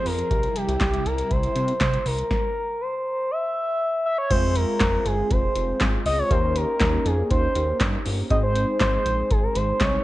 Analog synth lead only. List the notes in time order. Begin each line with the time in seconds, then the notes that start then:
0.06 A#4
0.56 G4
0.81 G4
1.06 A#4
1.31 C5
1.81 C5
1.99 C5
2.06 A#4
2.81 C5
3.31 E5
4.06 E5
4.18 C#5
4.31 C5
4.56 A#4
5.06 G#4
5.31 C5
6.06 D#5
6.18 C#5
6.31 C5
6.56 A#4
7.06 G#4
7.31 C5
8.31 D#5
8.43 C5
8.81 C5
8.93 C5
9.31 G#4
9.43 A#4
9.56 C5
9.81 C#5